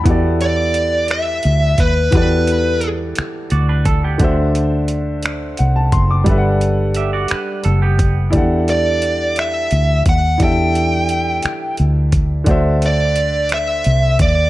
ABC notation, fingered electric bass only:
X:1
M:6/8
L:1/8
Q:3/8=58
K:Em
V:1 name="Fingered electric bass" clef=bass
E,,4 D,, ^D,, | E,,3 z D,,2 | D,,4 C,, F,,, | G,,,3 z F,,,2 |
E,,4 D,, ^D,, | E,,3 z D,,2 | D,,4 C,, ^D,, |]